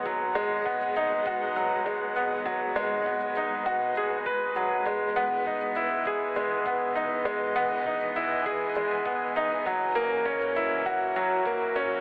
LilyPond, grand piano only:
\new Staff \with { instrumentName = "Grand piano" } { \time 4/4 \key gis \minor \tempo 4 = 100 fis8 gis8 b8 dis'8 fis'8 fis8 gis8 b8 | fis8 gis8 b8 dis'8 fis'8 gis'8 b'8 fis8 | gis8 b8 dis'8 e'8 gis'8 gis8 b8 dis'8 | gis8 b8 dis'8 e'8 gis'8 gis8 b8 dis'8 |
fis8 ais8 cis'8 e'8 fis'8 fis8 ais8 cis'8 | }